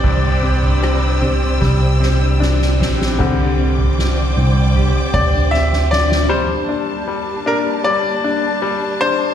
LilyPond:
<<
  \new Staff \with { instrumentName = "Grand piano" } { \time 4/4 \key c \mixolydian \tempo 4 = 77 d''2.~ d''8 r8 | r2 r8 d''8 e''8 d''8 | c''4 r8 bes'8 d''4. c''8 | }
  \new Staff \with { instrumentName = "String section" } { \time 4/4 \key c \mixolydian <c'' d'' g'' e'''>1 | <c'' d'' g'' d'''>1 | <g bes d' a''>1 | }
  \new Staff \with { instrumentName = "Clean electric guitar" } { \time 4/4 \key c \mixolydian <c c' d' g'>16 c'16 g'16 d'16 c'16 d'16 g'16 c'16 c16 c'16 g'16 d'16 c'16 d'16 g'16 c'16 | <c g'>8 c'8 d'8 c'8 g'8 c'16 d'16 c'8 d'8 | r1 | }
  \new Staff \with { instrumentName = "Grand piano" } { \time 4/4 \key c \mixolydian <g, c' d'>8 c'8 g8 c'8 g8 c'8 d'8 c'8 | <d g c'>8 r2. r8 | g8 d'8 g8 d'8 g8 d'8 g8 d'8 | }
  \new Staff \with { instrumentName = "Tine electric piano" } { \clef bass \time 4/4 \key c \mixolydian c,2 c,4. bes,,8 | c,4. c,8. r16 d,4. | r1 | }
  \new DrumStaff \with { instrumentName = "Drums" } \drummode { \time 4/4 <bd tomfh>8. tomfh16 ss8 tomfh8 <bd sn>8 sn8 sn16 sn16 sn16 sn16 | <cymc bd tomfh>8. tomfh16 sn4 tomfh8 bd16 tomfh16 sn16 sn16 sn16 sn16 | r4 r4 r4 r4 | }
>>